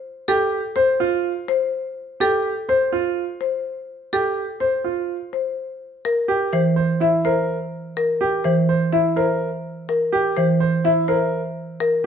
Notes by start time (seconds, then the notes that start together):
0.28 G4 A4
0.76 C5
1.00 F4
1.48 C5
2.20 G4 A4
2.69 C5
2.92 F4
3.41 C5
4.13 G4 A4
4.60 C5
4.84 F4
5.33 C5
6.05 A#4
6.28 G4
6.53 E3 C5
6.76 C5
7.00 E4 E5
7.25 A#4 C5
7.97 A#4
8.21 G4
8.44 E3 C5
8.69 C5
8.93 E4 E5
9.16 A#4 C5
9.89 A#4
10.12 G4
10.37 E3 C5
10.60 C5
10.84 E4 E5
11.08 A#4 C5
11.80 A#4